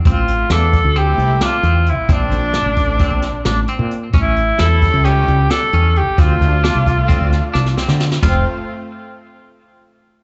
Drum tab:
CC |------------------|------------------|------------------|------------------|
HH |x-x-x-x-x-x-x-x-x-|x-x-x-x-x-x-x-x-x-|x-x-x-x-x-x-x-x-x-|x-x-x-x-x-x-------|
SD |----o-------o-----|----o-----o-o-----|----o-------o-----|----o---o-o-oooooo|
FT |------------------|------------------|------------------|------------------|
BD |o-----o-----------|o-----o-o---------|o-----o-----------|o-----o-o---------|

CC |x-----------------|
HH |------------------|
SD |------------------|
FT |o-----------------|
BD |o-----------------|